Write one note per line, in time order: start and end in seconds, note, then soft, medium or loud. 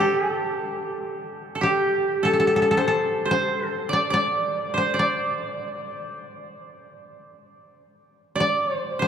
0.00 1.61 G4 medium
0.00 1.63 G4 medium
0.00 1.55 A4 medium
0.00 0.45 C5 medium
0.00 0.84 C5 soft
0.18 0.31 G#4 medium
0.31 1.87 A4 medium
1.55 2.22 A4 soft
1.61 3.65 G4 medium
1.61 3.67 G4 medium
2.23 4.13 A4 medium
2.23 2.33 A4 medium
2.33 2.39 A4 soft
2.40 2.47 A4 medium
2.47 2.56 A4 soft
2.56 2.62 A4 medium
2.62 2.71 A4 soft
2.71 2.77 A4 medium
2.77 2.87 A4 medium
2.77 3.31 C5 medium
2.88 3.69 A4 medium
3.25 4.73 C5 medium
3.31 3.69 C5 medium
3.69 4.77 A4 medium
3.89 4.10 D5 medium
3.93 4.13 D5 medium
4.10 4.93 D5 medium
4.10 4.99 D5 medium
4.74 6.45 C5 medium
4.74 6.49 C5 medium
4.94 7.46 D5 medium
4.99 7.48 D5 medium
8.36 8.74 D5 medium
8.40 8.77 D5 medium
8.74 8.99 C5 medium
8.74 9.02 C5 medium
8.99 9.08 C5 medium